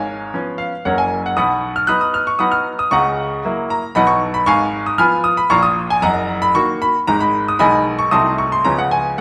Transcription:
Already playing: G#1 G#2 C#5 F5 G#5
0.34 F3 B3 C#4
0.58 F5
0.85 F#1 F#2 F#3 A#3 C#4 A#4 C#5 F#5
0.98 G#5
1.26 F#5
1.37 B1 B2 F#5 B5 D#6
1.76 F6
1.87 F#3 B3 D#4 B5 D#6 F#6
2.01 D#6
2.14 F6
2.27 C#6
2.39 F#3 B3 D#4 F#5 B5 D#6
2.52 F6
2.79 D#6
2.91 C#2 C#3 F#5 A#5 C#6
3.44 F#3 A#3 E4
3.70 A#5
3.95 B1 B2 F#3 B3 D#4 D#5 F#5 B5
4.07 C#6
4.34 B5
4.46 G#1 G#2 F5 G#5 C#6
4.86 D#6
4.98 F3 B3 F4 G#5 B5 F6
5.24 D#6
5.37 B5
5.50 A#1 A#2 F3 A#3 F4 F5 A#5 C#6
5.63 D#6
5.90 G#5
6.02 F#1 F#2 D#5 F#5 A#5
6.42 B5
6.55 D#3 A#3 F#4 C#6
6.82 B5
7.07 G#1 G#2 D#3 G#3 D#4 A#5
7.20 B5
7.48 D#6
7.59 B1 B2 D#3 G#3 D#4 D#5 G#5 B5
7.99 C#6
8.11 C2 C3 F#3 A3 D#4 A5 C6 D#6
8.38 C#6
8.52 C6
8.64 C#2 C#3 F3 B3 C#4 A#5
8.78 F#5
8.91 G#5

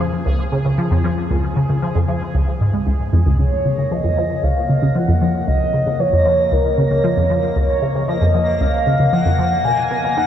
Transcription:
Already playing: G#4 G#5
0.26 C#2
0.52 C#3
0.65 C#3
0.78 F3
0.91 F2
1.04 F3
1.30 C#2
1.56 C#3
1.69 C#3
1.82 F3
1.95 F2
2.08 F3
2.34 C#2
2.61 G#2
2.73 G#3
2.87 C#2
3.13 F2
3.26 C#2
3.39 C#2 A#3 C#5 A#6
3.65 C#3
3.78 C#3
3.91 F3 D#5
4.04 F2
4.17 F3
4.43 C#2 F5
4.69 C#3
4.82 C#3
4.95 F3 F#5
5.08 F2
5.22 F3
5.47 C#2 D#5
5.74 C#3
5.87 C#3
6.00 F3 C#5
6.13 F2
6.26 F3
6.52 C#2 A#4
6.78 C#3
6.91 C#3
7.04 F3
7.17 F2
7.30 F3
7.56 C#2 C#5
7.82 C#3
7.95 C#3
8.08 F3 D#5
8.21 F2
8.34 F3
8.60 C#2 F5
8.86 C#3
8.99 C#3
9.13 F3 F#5
9.25 F2
9.39 F3
9.65 B2 G#5
9.91 B3
10.04 B3
10.17 D#4 F#5

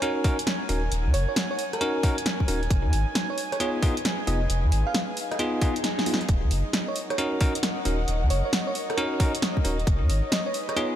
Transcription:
Already playing: D#4 A#4 G#5
0.02 C#4 D#4 F#4 A#4 C#5, closed hi-hat
0.24 C#4 D#4 F#4 A#4, kick, open hi-hat
0.35 C#5
0.39 closed hi-hat
0.47 snare, closed hi-hat
0.69 D#1 C#4 D#4 F#4 A#4 F#5, open hi-hat
0.91 D#1, closed hi-hat
1.06 D#2
1.14 F#1 C#5, open hi-hat
1.29 C#5
1.36 snare, closed hi-hat
1.51 C#5
1.59 open hi-hat
1.73 A#4, cross-stick, closed hi-hat
1.81 C#4 D#4 F#4 A#4, closed hi-hat
2.03 C#4 D#4 F#4 A#4, kick, open hi-hat
2.18 closed hi-hat
2.26 snare, closed hi-hat
2.40 kick
2.48 D#1 C#4 D#4 F#4 A#4, open hi-hat
2.63 closed hi-hat
2.70 F1, kick, closed hi-hat
2.85 F2
2.93 G#1, open hi-hat
3.02 B4
3.15 snare, closed hi-hat
3.26 G#4 C#5
3.38 open hi-hat
3.52 C#5, cross-stick, closed hi-hat
3.60 B3 D#4 F4 G#4, closed hi-hat
3.82 B3 D#4 F4 G#4, kick, open hi-hat
3.97 closed hi-hat
4.05 snare, closed hi-hat
4.27 F1 B3 D#4 F4 G#4 D#5, open hi-hat
4.33 F5
4.50 F1, closed hi-hat
4.64 F2
4.72 G#1, open hi-hat
4.87 F5, cross-stick
4.94 snare, closed hi-hat
5.17 open hi-hat
5.31 D#5, cross-stick, closed hi-hat
5.39 B3 D#4 F4 G#4 D#5, closed hi-hat, swell
5.62 B3 D#4 F4 G#4, kick, open hi-hat
5.76 closed hi-hat
5.84 snare, closed hi-hat
5.99 snare
6.06 B3 D#4 F4 G#4, open hi-hat
6.14 snare
6.21 closed hi-hat
6.29 D#1 D#5, kick, closed hi-hat
6.44 D#2
6.51 F#1, open hi-hat
6.73 snare, closed hi-hat
6.78 A#4
6.88 C#5
6.93 C#5 F#5, open hi-hat
7.10 C#5, cross-stick, closed hi-hat
7.18 C#4 D#4 F#4 A#4 C#5, closed hi-hat
7.41 C#4 D#4 F#4 A#4, kick, open hi-hat
7.55 closed hi-hat
7.63 snare, closed hi-hat
7.85 D#1 C#4 D#4 F#4 A#4, open hi-hat
8.08 D#1, closed hi-hat
8.23 D#2
8.30 F#1 C#5, open hi-hat
8.45 C#5
8.53 snare, closed hi-hat
8.67 C#5
8.75 open hi-hat
8.90 A#4, cross-stick, closed hi-hat
8.97 C#4 D#4 F#4 A#4, closed hi-hat
9.20 C#4 D#4 F#4 A#4, kick, open hi-hat
9.35 closed hi-hat
9.42 snare, closed hi-hat
9.57 kick
9.65 D#1 C#4 D#4 F#4 A#4, open hi-hat
9.80 closed hi-hat
9.87 F1, kick, closed hi-hat
10.02 F2
10.09 G#1, open hi-hat
10.17 G#4
10.32 snare, closed hi-hat
10.46 B4 C#5
10.54 open hi-hat
10.69 C#5, cross-stick, closed hi-hat
10.76 B3 D#4 F4 G#4 C#5, closed hi-hat

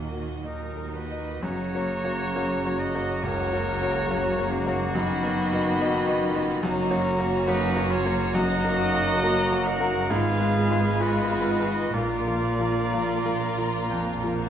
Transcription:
Already playing: D#2 A#2 D#3 A#3 F#4 A#4 D#5
0.12 F#4
0.44 D#2 D#3 F#3 D#4 A#4 D#5
0.77 A#4
0.93 A#3 D#4 F#4 B4 D#5
1.11 D#5
1.42 F#1 F#2 C#3 A#3 C#4 F#4 C#5 A#5
1.75 A#3 F#4 C#5
2.04 A#3 F#4 C#5
2.36 A#3 F#4 C#5
2.65 A#3 F#4 C#5
2.78 F#4 D#5
2.94 A#3 F#4 C#5
3.23 C#2 C#3 A#3 C#4 F#4 A#4 C#5 A#5
3.53 A#3 F#4 C#5
3.81 A#3 F#4 C#5
4.09 A#3 F#4 C#5
4.38 A#3 F#4 C#5
4.51 A#3 D#4 F#4
4.67 A#3 F#4 C#5
4.95 F#2 D#3 B3 C#4 D#4 F#4 D#5 B5
5.23 B3 F#4 D#5
5.40 B3
5.53 B3 F#4 D#5
5.81 B3 D#4 F#4 D#5
6.08 B3 F#4 D#5
6.24 F4
6.35 B3 F#4 D#5
6.63 F#1 F#2 F#3 A#3 D#4 F#4 C#5 A#5
6.90 A#3 F#4 C#5
7.05 C#4
7.18 A#3 F#4 C#5
7.47 A#3 D#4 F#4 B4 C#5
7.76 A#3 F#4 C#5
7.90 F4 C#5
8.06 A#3 F#4 C#5
8.34 F#2 F#3 A#3 D#4 F#4 A#4 D#5 A#5
8.64 A#3 F#4 A#4
8.94 A#3 F#4 A#4
9.23 A#3 F#4 A#4
9.51 A#3 F#4 A#4
9.67 D#4 A#4 F#5
9.80 A#3 F#4 A#4
10.10 G#1 G#2 G#3 F4 G#4 B4 F5 G#5 B5
10.14 B3
10.39 G#3 F4 B4
10.57 G#4
10.70 G#3 F4 B4
11.00 G#3 F4 F#4 B4 D#5
11.10 F5
11.19 D#5
11.27 G#3 F5
11.32 F4 B4 D#5
11.43 F5
11.51 D#5
11.60 G#3 F4 B4 F5
11.68 D#5
11.92 A#1 A#2 A#3 F4 A#4 D5 F5 A#5
12.26 F3 F4 A#4
12.59 F3 F4 A#4
12.91 F3 F4 A#4
13.25 F3 F4 A#4
13.58 F3 F4 A#4
13.90 F2
14.24 F3 F4 A#4
14.40 F#4

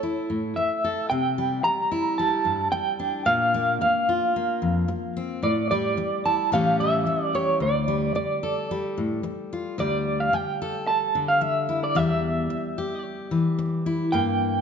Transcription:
Already playing: A4
0.03 E4
0.30 A2
0.56 E5, muted steel-string acoustic guitar stroke
0.84 A4
1.10 C3 G5
1.38 G3
1.64 A#5, muted steel-string acoustic guitar stroke
1.92 E4
2.18 G3 A5
2.45 G2
2.72 G5, muted steel-string acoustic guitar stroke
2.99 D4
3.26 A#2 F5
3.54 A#3
3.81 F5, muted steel-string acoustic guitar stroke
4.09 F4
4.36 A#3
4.62 F2
4.88 muted steel-string acoustic guitar stroke
5.17 C4
5.43 A2 D5
5.71 G3 D5
5.97 muted steel-string acoustic guitar stroke
6.25 E4 A5
6.52 A2 E3 G3 C#4 G4 F5
6.80 G3 E5
7.06 muted steel-string acoustic guitar stroke
7.24 D5
7.35 G4 C#5
7.60 D2 D5
7.88 G3
8.15 D5, muted steel-string acoustic guitar stroke
8.43 A4
8.71 G3
8.98 A2
9.23 muted steel-string acoustic guitar stroke
9.53 F4
9.78 D2 G3 D5
10.20 F5
10.33 G5, muted steel-string acoustic guitar stroke
10.62 A4
10.87 A5
11.15 D3
11.28 F5
11.41 E5, muted steel-string acoustic guitar stroke
11.69 E4
11.84 D5
11.95 E2 G3 E5
12.50 muted steel-string acoustic guitar stroke
12.78 G4
13.31 E3
13.59 muted steel-string acoustic guitar stroke
13.86 E4
14.12 G2 A#3 G5

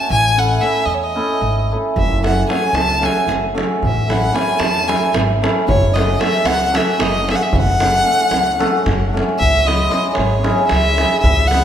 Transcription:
Already playing: A5
0.10 A1 G#5
0.36 A3 C#4 E4 A4 F#5
0.61 A3 C#4 E4 A4 E5
0.86 E2 D#5
0.94 C#5
1.03 D#5
1.15 A3 C#4 E4 A4
1.41 G#1
1.72 A3 C#4 E4 A4
1.96 F#1 E5, davul low
2.22 A3 C#4 F#4 A4 F#5, davul high
2.48 A3 C#4 F#4 A4 G#5, davul high
2.63 davul high
2.73 C#2 A5, davul high
2.89 davul high
3.01 A3 C#4 F#4 A4 G#5, davul high
3.27 F#1, davul high
3.54 A3 C#4 F#4 A4, davul high
3.82 A1 E5, davul low
4.08 A3 C#4 E4 A4 F#5, davul high
4.33 A3 C#4 E4 A4 G#5, davul high
4.48 davul high
4.59 E2 A5, davul high
4.75 davul high
4.88 A3 C#4 E4 A4 G#5, davul high
5.14 G#1, davul high
5.42 A3 C#4 E4 A4, davul high
5.68 F#1 C#5, davul low
5.94 A3 C#4 F#4 A4 D#5, davul high
6.19 A3 C#4 F#4 A4 E5, davul high
6.33 davul high
6.45 C#2 F#5, davul high
6.61 davul high
6.72 A3 C#4 F#4 A4 E5, davul high
6.99 F#1 D#5, davul high
7.27 A3 C#4 F#4 A4 E5, davul high
7.35 F#5
7.42 E5
7.53 F#1 F#5, davul low
7.67 davul high
7.80 A3 C#4 F#4 A4, davul high
7.94 davul high
8.05 A3 C#4 F#4 A4
8.18 davul high
8.31 C#2, davul high
8.47 davul high
8.59 A3 C#4 F#4 A4, davul high
8.86 F#1, davul high, davul low
9.02 davul high
9.13 A3 C#4 F#4 A4
9.17 davul high
9.29 davul high
9.39 C#2 E5, davul low
9.55 davul high
9.66 G#3 C#4 E4 G#4 D#5, davul high
9.79 davul high
9.90 G#3 C#4 E4 G#4, davul high
10.04 davul high
10.10 C#5 D#5
10.15 G#1, davul high
10.31 davul high
10.43 G#3 C#4 E4 G#4, davul high
10.58 davul high
10.67 C#2 E5, davul high
10.98 G#3 C#4 E4 G#4, davul high
11.11 davul high
11.21 C#2 E5, davul low
11.37 davul high
11.48 F#5, davul high
11.52 G#3 C#4 E4 G#4

